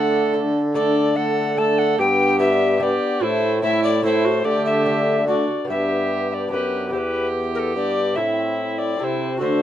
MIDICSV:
0, 0, Header, 1, 6, 480
1, 0, Start_track
1, 0, Key_signature, 1, "major"
1, 0, Tempo, 412939
1, 865, Time_signature, 3, 2, 24, 8
1, 11182, End_track
2, 0, Start_track
2, 0, Title_t, "Recorder"
2, 0, Program_c, 0, 74
2, 0, Note_on_c, 0, 78, 87
2, 374, Note_off_c, 0, 78, 0
2, 875, Note_on_c, 0, 74, 85
2, 1351, Note_on_c, 0, 78, 87
2, 1368, Note_off_c, 0, 74, 0
2, 1840, Note_on_c, 0, 81, 96
2, 1857, Note_off_c, 0, 78, 0
2, 2075, Note_on_c, 0, 78, 100
2, 2092, Note_off_c, 0, 81, 0
2, 2307, Note_off_c, 0, 78, 0
2, 2314, Note_on_c, 0, 79, 97
2, 2776, Note_off_c, 0, 79, 0
2, 2783, Note_on_c, 0, 76, 108
2, 3288, Note_on_c, 0, 74, 92
2, 3306, Note_off_c, 0, 76, 0
2, 3749, Note_on_c, 0, 72, 95
2, 3767, Note_off_c, 0, 74, 0
2, 4216, Note_off_c, 0, 72, 0
2, 4223, Note_on_c, 0, 76, 101
2, 4456, Note_off_c, 0, 76, 0
2, 4461, Note_on_c, 0, 74, 96
2, 4695, Note_off_c, 0, 74, 0
2, 4711, Note_on_c, 0, 72, 93
2, 5171, Note_on_c, 0, 74, 94
2, 5188, Note_off_c, 0, 72, 0
2, 5408, Note_off_c, 0, 74, 0
2, 5415, Note_on_c, 0, 76, 82
2, 6128, Note_off_c, 0, 76, 0
2, 6137, Note_on_c, 0, 74, 79
2, 6592, Note_off_c, 0, 74, 0
2, 6621, Note_on_c, 0, 76, 78
2, 7326, Note_off_c, 0, 76, 0
2, 7333, Note_on_c, 0, 76, 72
2, 7371, Note_on_c, 0, 74, 78
2, 7382, Note_off_c, 0, 76, 0
2, 7569, Note_off_c, 0, 74, 0
2, 7576, Note_on_c, 0, 71, 69
2, 8054, Note_off_c, 0, 71, 0
2, 8067, Note_on_c, 0, 72, 73
2, 8116, Note_on_c, 0, 71, 80
2, 8127, Note_off_c, 0, 72, 0
2, 8455, Note_off_c, 0, 71, 0
2, 8773, Note_on_c, 0, 70, 66
2, 8823, Note_on_c, 0, 69, 72
2, 8834, Note_off_c, 0, 70, 0
2, 9016, Note_off_c, 0, 69, 0
2, 9024, Note_on_c, 0, 74, 84
2, 9483, Note_on_c, 0, 76, 71
2, 9500, Note_off_c, 0, 74, 0
2, 10212, Note_on_c, 0, 74, 80
2, 10229, Note_off_c, 0, 76, 0
2, 10453, Note_off_c, 0, 74, 0
2, 10453, Note_on_c, 0, 74, 65
2, 10509, Note_on_c, 0, 72, 71
2, 10521, Note_off_c, 0, 74, 0
2, 10923, Note_off_c, 0, 72, 0
2, 10930, Note_on_c, 0, 72, 95
2, 11182, Note_off_c, 0, 72, 0
2, 11182, End_track
3, 0, Start_track
3, 0, Title_t, "Viola"
3, 0, Program_c, 1, 41
3, 0, Note_on_c, 1, 69, 67
3, 630, Note_off_c, 1, 69, 0
3, 859, Note_on_c, 1, 69, 62
3, 1309, Note_off_c, 1, 69, 0
3, 1349, Note_on_c, 1, 69, 59
3, 1818, Note_off_c, 1, 69, 0
3, 1826, Note_on_c, 1, 69, 67
3, 2312, Note_on_c, 1, 67, 68
3, 2329, Note_off_c, 1, 69, 0
3, 3245, Note_off_c, 1, 67, 0
3, 3252, Note_on_c, 1, 67, 73
3, 3749, Note_on_c, 1, 64, 75
3, 3766, Note_off_c, 1, 67, 0
3, 4209, Note_off_c, 1, 64, 0
3, 4216, Note_on_c, 1, 64, 73
3, 4687, Note_off_c, 1, 64, 0
3, 4704, Note_on_c, 1, 64, 74
3, 4935, Note_on_c, 1, 66, 61
3, 4952, Note_off_c, 1, 64, 0
3, 5172, Note_off_c, 1, 66, 0
3, 5179, Note_on_c, 1, 67, 67
3, 6125, Note_off_c, 1, 67, 0
3, 6139, Note_on_c, 1, 66, 53
3, 6388, Note_off_c, 1, 66, 0
3, 6622, Note_on_c, 1, 67, 60
3, 7542, Note_off_c, 1, 67, 0
3, 7565, Note_on_c, 1, 67, 51
3, 8034, Note_off_c, 1, 67, 0
3, 8041, Note_on_c, 1, 67, 61
3, 9493, Note_on_c, 1, 64, 57
3, 9510, Note_off_c, 1, 67, 0
3, 10451, Note_off_c, 1, 64, 0
3, 10458, Note_on_c, 1, 64, 56
3, 10909, Note_off_c, 1, 64, 0
3, 10916, Note_on_c, 1, 66, 57
3, 11182, Note_off_c, 1, 66, 0
3, 11182, End_track
4, 0, Start_track
4, 0, Title_t, "Lute"
4, 0, Program_c, 2, 24
4, 0, Note_on_c, 2, 50, 59
4, 383, Note_on_c, 2, 57, 47
4, 390, Note_on_c, 2, 62, 47
4, 397, Note_on_c, 2, 69, 57
4, 820, Note_off_c, 2, 57, 0
4, 820, Note_off_c, 2, 62, 0
4, 826, Note_off_c, 2, 69, 0
4, 863, Note_on_c, 2, 57, 54
4, 872, Note_on_c, 2, 62, 56
4, 877, Note_on_c, 2, 69, 53
4, 1299, Note_off_c, 2, 57, 0
4, 1303, Note_off_c, 2, 62, 0
4, 1305, Note_off_c, 2, 69, 0
4, 1825, Note_on_c, 2, 57, 49
4, 1831, Note_on_c, 2, 62, 47
4, 1836, Note_on_c, 2, 69, 45
4, 2257, Note_off_c, 2, 50, 0
4, 2259, Note_off_c, 2, 57, 0
4, 2262, Note_off_c, 2, 62, 0
4, 2265, Note_off_c, 2, 69, 0
4, 2298, Note_on_c, 2, 43, 55
4, 2781, Note_on_c, 2, 59, 51
4, 2784, Note_on_c, 2, 62, 53
4, 2788, Note_on_c, 2, 67, 65
4, 3214, Note_off_c, 2, 62, 0
4, 3215, Note_off_c, 2, 59, 0
4, 3217, Note_off_c, 2, 67, 0
4, 3252, Note_on_c, 2, 59, 54
4, 3253, Note_on_c, 2, 62, 55
4, 3259, Note_on_c, 2, 67, 56
4, 3366, Note_off_c, 2, 43, 0
4, 3688, Note_off_c, 2, 59, 0
4, 3688, Note_off_c, 2, 62, 0
4, 3692, Note_off_c, 2, 67, 0
4, 3727, Note_on_c, 2, 45, 63
4, 4209, Note_on_c, 2, 57, 57
4, 4219, Note_on_c, 2, 60, 59
4, 4224, Note_on_c, 2, 64, 66
4, 4648, Note_off_c, 2, 57, 0
4, 4650, Note_off_c, 2, 60, 0
4, 4654, Note_off_c, 2, 64, 0
4, 4680, Note_on_c, 2, 57, 53
4, 4687, Note_on_c, 2, 60, 56
4, 4691, Note_on_c, 2, 64, 63
4, 5123, Note_off_c, 2, 57, 0
4, 5123, Note_off_c, 2, 60, 0
4, 5124, Note_off_c, 2, 45, 0
4, 5127, Note_off_c, 2, 64, 0
4, 5164, Note_on_c, 2, 50, 57
4, 5644, Note_on_c, 2, 57, 55
4, 5652, Note_on_c, 2, 62, 54
4, 5652, Note_on_c, 2, 67, 59
4, 6090, Note_off_c, 2, 57, 0
4, 6092, Note_off_c, 2, 62, 0
4, 6094, Note_off_c, 2, 67, 0
4, 6128, Note_on_c, 2, 57, 44
4, 6134, Note_on_c, 2, 62, 46
4, 6145, Note_on_c, 2, 66, 39
4, 6334, Note_off_c, 2, 50, 0
4, 6556, Note_off_c, 2, 62, 0
4, 6561, Note_on_c, 2, 59, 42
4, 6566, Note_off_c, 2, 66, 0
4, 6571, Note_on_c, 2, 62, 38
4, 6575, Note_off_c, 2, 57, 0
4, 6594, Note_on_c, 2, 67, 38
4, 6603, Note_on_c, 2, 43, 45
4, 7516, Note_off_c, 2, 59, 0
4, 7528, Note_off_c, 2, 62, 0
4, 7530, Note_on_c, 2, 59, 34
4, 7532, Note_off_c, 2, 43, 0
4, 7542, Note_off_c, 2, 67, 0
4, 7542, Note_on_c, 2, 62, 39
4, 7556, Note_on_c, 2, 67, 38
4, 7564, Note_on_c, 2, 42, 43
4, 7991, Note_off_c, 2, 59, 0
4, 8005, Note_on_c, 2, 59, 37
4, 8012, Note_off_c, 2, 42, 0
4, 8019, Note_off_c, 2, 62, 0
4, 8024, Note_on_c, 2, 64, 44
4, 8029, Note_off_c, 2, 67, 0
4, 8043, Note_on_c, 2, 67, 42
4, 8058, Note_on_c, 2, 40, 47
4, 8976, Note_off_c, 2, 40, 0
4, 9021, Note_on_c, 2, 43, 41
4, 9430, Note_off_c, 2, 59, 0
4, 9440, Note_off_c, 2, 64, 0
4, 9450, Note_off_c, 2, 67, 0
4, 9455, Note_on_c, 2, 60, 41
4, 9458, Note_off_c, 2, 43, 0
4, 9471, Note_on_c, 2, 64, 39
4, 9487, Note_on_c, 2, 69, 41
4, 9504, Note_on_c, 2, 45, 49
4, 10406, Note_off_c, 2, 60, 0
4, 10414, Note_off_c, 2, 45, 0
4, 10415, Note_off_c, 2, 64, 0
4, 10420, Note_on_c, 2, 60, 42
4, 10423, Note_off_c, 2, 69, 0
4, 10442, Note_on_c, 2, 64, 38
4, 10449, Note_on_c, 2, 69, 36
4, 10467, Note_on_c, 2, 48, 43
4, 10893, Note_off_c, 2, 60, 0
4, 10896, Note_off_c, 2, 48, 0
4, 10898, Note_on_c, 2, 62, 44
4, 10908, Note_off_c, 2, 64, 0
4, 10912, Note_off_c, 2, 69, 0
4, 10913, Note_on_c, 2, 66, 43
4, 10926, Note_on_c, 2, 69, 43
4, 10938, Note_on_c, 2, 50, 48
4, 11182, Note_off_c, 2, 50, 0
4, 11182, Note_off_c, 2, 62, 0
4, 11182, Note_off_c, 2, 66, 0
4, 11182, Note_off_c, 2, 69, 0
4, 11182, End_track
5, 0, Start_track
5, 0, Title_t, "Trombone"
5, 0, Program_c, 3, 57
5, 0, Note_on_c, 3, 57, 72
5, 613, Note_off_c, 3, 57, 0
5, 863, Note_on_c, 3, 57, 56
5, 1311, Note_off_c, 3, 57, 0
5, 1353, Note_on_c, 3, 57, 57
5, 1820, Note_off_c, 3, 57, 0
5, 1837, Note_on_c, 3, 57, 69
5, 2324, Note_on_c, 3, 59, 73
5, 2342, Note_off_c, 3, 57, 0
5, 3268, Note_off_c, 3, 59, 0
5, 3275, Note_on_c, 3, 59, 70
5, 3736, Note_off_c, 3, 59, 0
5, 3753, Note_on_c, 3, 57, 72
5, 4215, Note_off_c, 3, 57, 0
5, 4229, Note_on_c, 3, 57, 73
5, 4682, Note_off_c, 3, 57, 0
5, 4689, Note_on_c, 3, 57, 81
5, 5163, Note_off_c, 3, 57, 0
5, 5169, Note_on_c, 3, 57, 77
5, 6120, Note_off_c, 3, 57, 0
5, 6136, Note_on_c, 3, 57, 58
5, 6378, Note_off_c, 3, 57, 0
5, 6625, Note_on_c, 3, 59, 49
5, 7543, Note_off_c, 3, 59, 0
5, 7591, Note_on_c, 3, 59, 60
5, 8055, Note_off_c, 3, 59, 0
5, 8062, Note_on_c, 3, 59, 60
5, 9474, Note_off_c, 3, 59, 0
5, 9509, Note_on_c, 3, 60, 56
5, 10444, Note_off_c, 3, 60, 0
5, 10461, Note_on_c, 3, 60, 58
5, 10929, Note_off_c, 3, 60, 0
5, 10952, Note_on_c, 3, 57, 57
5, 11182, Note_off_c, 3, 57, 0
5, 11182, End_track
6, 0, Start_track
6, 0, Title_t, "Bassoon"
6, 0, Program_c, 4, 70
6, 0, Note_on_c, 4, 50, 73
6, 2259, Note_off_c, 4, 50, 0
6, 2311, Note_on_c, 4, 43, 74
6, 3397, Note_off_c, 4, 43, 0
6, 3746, Note_on_c, 4, 45, 80
6, 5134, Note_off_c, 4, 45, 0
6, 5173, Note_on_c, 4, 50, 76
6, 6361, Note_off_c, 4, 50, 0
6, 6621, Note_on_c, 4, 43, 51
6, 7541, Note_off_c, 4, 43, 0
6, 7591, Note_on_c, 4, 42, 45
6, 8065, Note_on_c, 4, 40, 55
6, 8083, Note_off_c, 4, 42, 0
6, 9023, Note_on_c, 4, 43, 49
6, 9041, Note_off_c, 4, 40, 0
6, 9495, Note_off_c, 4, 43, 0
6, 9502, Note_on_c, 4, 45, 51
6, 10459, Note_on_c, 4, 48, 46
6, 10476, Note_off_c, 4, 45, 0
6, 10924, Note_off_c, 4, 48, 0
6, 10931, Note_on_c, 4, 50, 54
6, 11182, Note_off_c, 4, 50, 0
6, 11182, End_track
0, 0, End_of_file